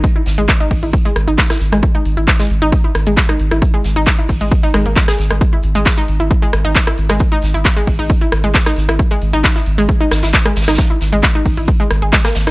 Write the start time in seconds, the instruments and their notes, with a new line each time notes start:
0.04 kick, closed hi-hat, tambourine
0.16 synth arpeggio sound E4
0.26 sub bass G#1, snare, open hi-hat, tambourine
0.38 sub bass G#1, synth arpeggio sound G#3, closed hi-hat
0.48 kick, snare, clap, closed hi-hat, tambourine
0.60 synth arpeggio sound D#4
0.71 sub bass G#1, kick, open hi-hat
0.83 sub bass G#1, synth arpeggio sound E4, closed hi-hat
0.93 kick, closed hi-hat, tambourine
1.05 synth arpeggio sound G#3, closed hi-hat
1.16 sub bass G#1, cross-stick, open hi-hat, tambourine
1.27 sub bass G#1, synth arpeggio sound D#4, closed hi-hat
1.38 kick, snare, clap, closed hi-hat, tambourine
1.50 synth arpeggio sound E4, cross-stick, snare
1.60 sub bass G#1, snare, open hi-hat, tambourine
1.72 sub bass G#1, synth arpeggio sound G#3, cross-stick, closed hi-hat
1.82 kick, closed hi-hat, tambourine
1.95 synth arpeggio sound D#4
2.05 sub bass G#1, open hi-hat, tambourine
2.17 sub bass G#1, synth arpeggio sound E4, closed hi-hat
2.27 kick, snare, clap, closed hi-hat, tambourine
2.39 synth arpeggio sound G#3, snare
2.50 sub bass G#1, open hi-hat, tambourine
2.62 sub bass G#1, synth arpeggio sound D#4, closed hi-hat
2.72 kick, closed hi-hat, tambourine
2.84 synth arpeggio sound E4
2.95 sub bass G#1, cross-stick, open hi-hat, tambourine
3.06 sub bass G#1, synth arpeggio sound G#3, closed hi-hat
3.17 kick, snare, clap, closed hi-hat, tambourine
3.29 synth arpeggio sound D#4, cross-stick
3.39 sub bass G#1, open hi-hat, tambourine
3.51 sub bass G#1, synth arpeggio sound E4, cross-stick, closed hi-hat
3.62 kick, closed hi-hat, tambourine
3.74 synth arpeggio sound G#3
3.84 sub bass G#1, snare, open hi-hat, tambourine
3.96 sub bass G#1, synth arpeggio sound D#4, closed hi-hat
4.06 kick, snare, clap, closed hi-hat, tambourine
4.19 synth arpeggio sound E4
4.29 sub bass G#1, kick, open hi-hat
4.41 sub bass G#1, synth arpeggio sound G#3, closed hi-hat
4.51 kick, closed hi-hat, tambourine
4.63 synth arpeggio sound D#4
4.74 sub bass G#1, synth arpeggio sound G#3, cross-stick, open hi-hat, tambourine
4.86 sub bass G#1, synth arpeggio sound A#3, closed hi-hat
4.96 kick, snare, clap, closed hi-hat, tambourine
5.08 synth arpeggio sound G#4, cross-stick, snare
5.18 sub bass G#1, snare, open hi-hat, tambourine
5.30 sub bass G#1, synth arpeggio sound G#3, cross-stick, closed hi-hat
5.41 kick, closed hi-hat, tambourine
5.53 synth arpeggio sound E4
5.63 sub bass G#1, open hi-hat, tambourine
5.75 sub bass G#1, synth arpeggio sound G#3, closed hi-hat
5.86 kick, snare, clap, closed hi-hat, tambourine
5.97 synth arpeggio sound D#4, snare
6.08 sub bass G#1, open hi-hat, tambourine
6.20 sub bass G#1, synth arpeggio sound E4, closed hi-hat
6.31 kick, closed hi-hat, tambourine
6.42 synth arpeggio sound G#3
6.53 sub bass G#1, cross-stick, open hi-hat, tambourine
6.65 sub bass G#1, synth arpeggio sound D#4, closed hi-hat
6.75 kick, snare, clap, closed hi-hat, tambourine
6.87 synth arpeggio sound E4, cross-stick
6.98 sub bass G#1, open hi-hat, tambourine
7.09 sub bass G#1, synth arpeggio sound G#3, cross-stick, closed hi-hat
7.20 kick, closed hi-hat, tambourine
7.32 synth arpeggio sound D#4
7.42 sub bass G#1, snare, open hi-hat, tambourine
7.54 sub bass G#1, synth arpeggio sound E4, closed hi-hat
7.65 kick, snare, clap, closed hi-hat, tambourine
7.76 synth arpeggio sound G#3
7.87 sub bass G#1, kick, open hi-hat
7.99 sub bass G#1, synth arpeggio sound D#4, closed hi-hat
8.10 kick, closed hi-hat, tambourine
8.21 synth arpeggio sound E4, closed hi-hat
8.32 sub bass G#1, cross-stick, open hi-hat, tambourine
8.44 sub bass G#1, synth arpeggio sound G#3, closed hi-hat
8.54 kick, snare, clap, closed hi-hat, tambourine
8.66 synth arpeggio sound D#4, cross-stick, snare
8.76 sub bass G#1, snare, open hi-hat, tambourine
8.89 sub bass G#1, synth arpeggio sound E4, cross-stick, closed hi-hat
8.99 kick, closed hi-hat, tambourine
9.11 synth arpeggio sound G#3
9.21 sub bass G#1, open hi-hat, tambourine
9.33 sub bass G#1, synth arpeggio sound D#4, closed hi-hat
9.44 kick, snare, clap, closed hi-hat, tambourine
9.56 synth arpeggio sound E4, snare
9.66 sub bass G#1, open hi-hat, tambourine
9.78 sub bass G#1, synth arpeggio sound G#3, closed hi-hat
9.89 kick, closed hi-hat, tambourine
10.00 synth arpeggio sound D#4
10.11 sub bass G#1, cross-stick, snare, open hi-hat, tambourine
10.22 sub bass G#1, synth arpeggio sound E4, snare, closed hi-hat, tambourine
10.33 kick, snare, clap, closed hi-hat, tambourine
10.45 synth arpeggio sound G#3, cross-stick
10.56 sub bass G#1, snare, open hi-hat, tambourine
10.62 snare, tambourine
10.68 sub bass G#1, synth arpeggio sound D#4, cross-stick, snare, closed hi-hat, tambourine
10.73 snare, tambourine
10.78 kick, snare, closed hi-hat, tambourine
10.90 synth arpeggio sound E4
11.01 sub bass G#1, snare, open hi-hat, tambourine
11.12 sub bass G#1, synth arpeggio sound G#3, closed hi-hat
11.23 kick, snare, clap, closed hi-hat, tambourine
11.35 synth arpeggio sound D#4
11.46 sub bass G#1, kick, open hi-hat
11.57 sub bass G#1, synth arpeggio sound E4, closed hi-hat
11.68 kick, closed hi-hat, tambourine
11.80 synth arpeggio sound G#3, closed hi-hat
11.90 sub bass G#1, cross-stick, open hi-hat, tambourine
12.02 sub bass G#1, synth arpeggio sound G#4, closed hi-hat
12.12 synth arpeggio sound G#3, kick, snare, clap, closed hi-hat, tambourine
12.25 synth arpeggio sound A#3, cross-stick, snare
12.34 sub bass G#1, snare, open hi-hat, tambourine
12.46 sub bass G#1, synth arpeggio sound D#4, cross-stick, snare, open hi-hat